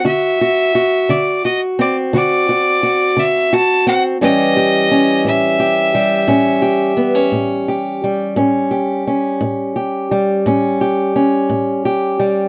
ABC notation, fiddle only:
X:1
M:12/8
L:1/8
Q:3/8=58
K:Amix
V:1 name="Fiddle"
e3 d ^d =d d3 e a f | ^d3 e6 z3 | z12 |]